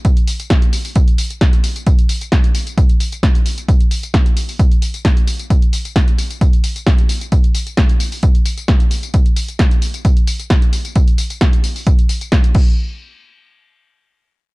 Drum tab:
CC |----------------|----------------|----------------|----------------|
HH |xxoxxxooxxoxxxox|xxoxxxoxxxoxxxox|xxoxxxooxxoxxxox|xxoxxxoxxxoxxxox|
TB |x-xxx-xxx-xxx-xx|x-xxx-xxx-xxx-xx|x-xxx-xxx-xxx-xx|x-xxx-xxx-xxx-xx|
SD |----o-------o---|----o-------o---|----o-------o---|----o-------o---|
BD |o---o---o---o---|o---o---o---o---|o---o---o---o---|o---o---o---o---|

CC |----------------|----------------|--------------x-|----------------|
HH |xxoxxxooxxoxxxox|xxoxxxoxxxoxxxox|xxoxxxooxxoxxx--|----------------|
TB |x-xxx-xxx-xxx-xx|x-xxx-xxx-xxx-xx|x-xxx-xxx-xxx---|----------------|
SD |----o-------o---|----o-------o---|----o-------o---|----------------|
BD |o---o---o---o---|o---o---o---o---|o---o---o---o-o-|----------------|